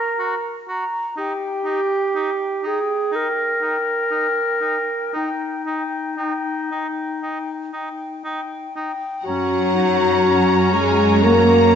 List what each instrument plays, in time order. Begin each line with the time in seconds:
Already playing: clarinet A#4, flute A#5
0.19 oboe F#4, flute A#5
0.68 oboe F#4, flute A#5
1.17 oboe D#4, clarinet G4, flute G5
1.65 oboe D#4, flute G5
2.15 oboe D#4, flute G5
2.63 oboe D#4, clarinet G#4, flute G5
3.12 oboe D#4, clarinet A#4, flute G5
3.61 oboe D#4, flute G5
4.11 oboe D#4, flute G5
4.61 oboe D#4
4.65 flute G5
5.13 oboe D#4, clarinet D#4, flute G5
5.66 oboe D#4, flute G5
6.17 oboe D#4, flute G5
6.71 oboe D#4, flute G5
7.22 oboe D#4, flute G5
7.73 oboe D#4, flute G5
8.24 oboe D#4, flute G5
8.76 oboe D#4, flute G5
9.23 double bass section F#2, cello section F#3, viola section C#4 F#4, clarinet C#4, french horn section F#4, oboe C#5, violin section F#5 A#5, flute A#5
9.75 clarinet D#4
10.24 clarinet C#4
10.73 cello section G#3, french horn section G#4, violin section G#5
11.23 cello section A#3, clarinet A#3, french horn section A#4, oboe C#5, violin section A#5, flute A#5